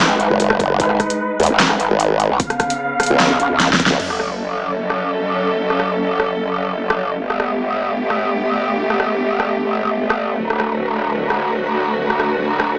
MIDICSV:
0, 0, Header, 1, 6, 480
1, 0, Start_track
1, 0, Tempo, 400000
1, 958, Time_signature, 4, 2, 24, 8
1, 15343, End_track
2, 0, Start_track
2, 0, Title_t, "String section"
2, 0, Program_c, 0, 48
2, 0, Note_on_c, 0, 56, 88
2, 0, Note_on_c, 0, 63, 78
2, 0, Note_on_c, 0, 71, 97
2, 2830, Note_off_c, 0, 56, 0
2, 2830, Note_off_c, 0, 63, 0
2, 2830, Note_off_c, 0, 71, 0
2, 2879, Note_on_c, 0, 59, 78
2, 2879, Note_on_c, 0, 77, 96
2, 2880, Note_on_c, 0, 49, 92
2, 4779, Note_off_c, 0, 49, 0
2, 4779, Note_off_c, 0, 59, 0
2, 4779, Note_off_c, 0, 77, 0
2, 4796, Note_on_c, 0, 54, 72
2, 4796, Note_on_c, 0, 69, 81
2, 4797, Note_on_c, 0, 61, 67
2, 8598, Note_off_c, 0, 54, 0
2, 8598, Note_off_c, 0, 69, 0
2, 8599, Note_off_c, 0, 61, 0
2, 8637, Note_on_c, 0, 57, 78
2, 8637, Note_on_c, 0, 59, 66
2, 8638, Note_on_c, 0, 67, 89
2, 12439, Note_off_c, 0, 59, 0
2, 12439, Note_off_c, 0, 67, 0
2, 12478, Note_on_c, 0, 50, 77
2, 12478, Note_on_c, 0, 66, 82
2, 15343, Note_off_c, 0, 50, 0
2, 15343, Note_off_c, 0, 57, 0
2, 15343, Note_off_c, 0, 66, 0
2, 15343, End_track
3, 0, Start_track
3, 0, Title_t, "Wobble bass"
3, 0, Program_c, 1, 39
3, 362, Note_on_c, 1, 30, 98
3, 939, Note_off_c, 1, 30, 0
3, 1677, Note_on_c, 1, 39, 101
3, 1782, Note_off_c, 1, 39, 0
3, 2283, Note_on_c, 1, 32, 101
3, 2743, Note_off_c, 1, 32, 0
3, 3722, Note_on_c, 1, 37, 104
3, 3942, Note_off_c, 1, 37, 0
3, 4683, Note_on_c, 1, 37, 91
3, 4779, Note_off_c, 1, 37, 0
3, 15343, End_track
4, 0, Start_track
4, 0, Title_t, "Wobble bass"
4, 0, Program_c, 2, 39
4, 0, Note_on_c, 2, 32, 92
4, 342, Note_off_c, 2, 32, 0
4, 957, Note_on_c, 2, 32, 98
4, 1179, Note_off_c, 2, 32, 0
4, 1803, Note_on_c, 2, 32, 96
4, 2263, Note_off_c, 2, 32, 0
4, 2762, Note_on_c, 2, 35, 96
4, 2859, Note_off_c, 2, 35, 0
4, 3962, Note_on_c, 2, 37, 97
4, 4059, Note_off_c, 2, 37, 0
4, 4077, Note_on_c, 2, 35, 97
4, 4182, Note_off_c, 2, 35, 0
4, 4201, Note_on_c, 2, 37, 96
4, 4422, Note_off_c, 2, 37, 0
4, 4797, Note_on_c, 2, 30, 81
4, 8614, Note_off_c, 2, 30, 0
4, 8637, Note_on_c, 2, 31, 81
4, 12454, Note_off_c, 2, 31, 0
4, 12477, Note_on_c, 2, 26, 85
4, 15343, Note_off_c, 2, 26, 0
4, 15343, End_track
5, 0, Start_track
5, 0, Title_t, "Sub drop"
5, 0, Program_c, 3, 103
5, 4797, Note_on_c, 3, 60, 62
5, 6717, Note_off_c, 3, 60, 0
5, 15343, End_track
6, 0, Start_track
6, 0, Title_t, "Drums"
6, 237, Note_on_c, 9, 42, 52
6, 357, Note_off_c, 9, 42, 0
6, 477, Note_on_c, 9, 42, 78
6, 597, Note_off_c, 9, 42, 0
6, 602, Note_on_c, 9, 36, 59
6, 602, Note_on_c, 9, 37, 85
6, 717, Note_off_c, 9, 36, 0
6, 717, Note_on_c, 9, 36, 104
6, 717, Note_on_c, 9, 42, 52
6, 722, Note_off_c, 9, 37, 0
6, 837, Note_off_c, 9, 36, 0
6, 837, Note_off_c, 9, 42, 0
6, 957, Note_on_c, 9, 36, 127
6, 957, Note_on_c, 9, 42, 86
6, 1077, Note_off_c, 9, 36, 0
6, 1077, Note_off_c, 9, 42, 0
6, 1082, Note_on_c, 9, 37, 52
6, 1197, Note_off_c, 9, 37, 0
6, 1197, Note_on_c, 9, 36, 59
6, 1197, Note_on_c, 9, 37, 59
6, 1197, Note_on_c, 9, 42, 54
6, 1317, Note_off_c, 9, 36, 0
6, 1317, Note_off_c, 9, 37, 0
6, 1317, Note_off_c, 9, 42, 0
6, 1321, Note_on_c, 9, 42, 83
6, 1441, Note_off_c, 9, 42, 0
6, 1677, Note_on_c, 9, 42, 50
6, 1718, Note_off_c, 9, 42, 0
6, 1718, Note_on_c, 9, 42, 68
6, 1756, Note_off_c, 9, 42, 0
6, 1756, Note_on_c, 9, 42, 80
6, 1876, Note_off_c, 9, 42, 0
6, 1916, Note_on_c, 9, 38, 116
6, 1916, Note_on_c, 9, 39, 88
6, 1916, Note_on_c, 9, 42, 84
6, 2036, Note_off_c, 9, 38, 0
6, 2036, Note_off_c, 9, 39, 0
6, 2036, Note_off_c, 9, 42, 0
6, 2042, Note_on_c, 9, 37, 61
6, 2156, Note_on_c, 9, 42, 57
6, 2162, Note_off_c, 9, 37, 0
6, 2276, Note_off_c, 9, 42, 0
6, 2397, Note_on_c, 9, 42, 84
6, 2517, Note_off_c, 9, 42, 0
6, 2637, Note_on_c, 9, 42, 55
6, 2757, Note_off_c, 9, 42, 0
6, 2877, Note_on_c, 9, 42, 93
6, 2878, Note_on_c, 9, 36, 123
6, 2997, Note_off_c, 9, 42, 0
6, 2998, Note_off_c, 9, 36, 0
6, 3002, Note_on_c, 9, 37, 53
6, 3002, Note_on_c, 9, 42, 36
6, 3116, Note_off_c, 9, 37, 0
6, 3116, Note_off_c, 9, 42, 0
6, 3116, Note_on_c, 9, 37, 59
6, 3116, Note_on_c, 9, 42, 57
6, 3118, Note_on_c, 9, 36, 65
6, 3236, Note_off_c, 9, 37, 0
6, 3236, Note_off_c, 9, 42, 0
6, 3238, Note_off_c, 9, 36, 0
6, 3242, Note_on_c, 9, 42, 86
6, 3362, Note_off_c, 9, 42, 0
6, 3597, Note_on_c, 9, 37, 62
6, 3597, Note_on_c, 9, 42, 53
6, 3639, Note_off_c, 9, 42, 0
6, 3639, Note_on_c, 9, 42, 72
6, 3677, Note_off_c, 9, 42, 0
6, 3677, Note_on_c, 9, 42, 85
6, 3717, Note_off_c, 9, 37, 0
6, 3797, Note_off_c, 9, 42, 0
6, 3837, Note_on_c, 9, 38, 120
6, 3837, Note_on_c, 9, 39, 91
6, 3837, Note_on_c, 9, 42, 82
6, 3957, Note_off_c, 9, 38, 0
6, 3957, Note_off_c, 9, 39, 0
6, 3957, Note_off_c, 9, 42, 0
6, 4077, Note_on_c, 9, 42, 58
6, 4197, Note_off_c, 9, 42, 0
6, 4317, Note_on_c, 9, 38, 67
6, 4317, Note_on_c, 9, 42, 81
6, 4437, Note_off_c, 9, 38, 0
6, 4437, Note_off_c, 9, 42, 0
6, 4442, Note_on_c, 9, 36, 60
6, 4477, Note_on_c, 9, 38, 85
6, 4557, Note_off_c, 9, 36, 0
6, 4557, Note_on_c, 9, 36, 103
6, 4557, Note_on_c, 9, 42, 51
6, 4597, Note_off_c, 9, 38, 0
6, 4637, Note_on_c, 9, 38, 94
6, 4677, Note_off_c, 9, 36, 0
6, 4677, Note_off_c, 9, 42, 0
6, 4757, Note_off_c, 9, 38, 0
6, 4796, Note_on_c, 9, 49, 74
6, 4916, Note_off_c, 9, 49, 0
6, 4921, Note_on_c, 9, 37, 44
6, 5036, Note_off_c, 9, 37, 0
6, 5036, Note_on_c, 9, 37, 46
6, 5156, Note_off_c, 9, 37, 0
6, 5882, Note_on_c, 9, 37, 49
6, 6002, Note_off_c, 9, 37, 0
6, 6842, Note_on_c, 9, 37, 43
6, 6957, Note_off_c, 9, 37, 0
6, 6957, Note_on_c, 9, 37, 44
6, 7077, Note_off_c, 9, 37, 0
6, 7436, Note_on_c, 9, 37, 54
6, 7556, Note_off_c, 9, 37, 0
6, 8282, Note_on_c, 9, 37, 67
6, 8402, Note_off_c, 9, 37, 0
6, 8762, Note_on_c, 9, 37, 42
6, 8877, Note_off_c, 9, 37, 0
6, 8877, Note_on_c, 9, 37, 46
6, 8997, Note_off_c, 9, 37, 0
6, 9722, Note_on_c, 9, 37, 45
6, 9842, Note_off_c, 9, 37, 0
6, 10683, Note_on_c, 9, 37, 46
6, 10797, Note_off_c, 9, 37, 0
6, 10797, Note_on_c, 9, 37, 50
6, 10917, Note_off_c, 9, 37, 0
6, 11277, Note_on_c, 9, 37, 51
6, 11397, Note_off_c, 9, 37, 0
6, 12122, Note_on_c, 9, 37, 64
6, 12242, Note_off_c, 9, 37, 0
6, 12602, Note_on_c, 9, 37, 45
6, 12717, Note_off_c, 9, 37, 0
6, 12717, Note_on_c, 9, 37, 49
6, 12837, Note_off_c, 9, 37, 0
6, 13563, Note_on_c, 9, 37, 52
6, 13683, Note_off_c, 9, 37, 0
6, 14522, Note_on_c, 9, 37, 47
6, 14637, Note_off_c, 9, 37, 0
6, 14637, Note_on_c, 9, 37, 50
6, 14757, Note_off_c, 9, 37, 0
6, 15117, Note_on_c, 9, 37, 57
6, 15237, Note_off_c, 9, 37, 0
6, 15343, End_track
0, 0, End_of_file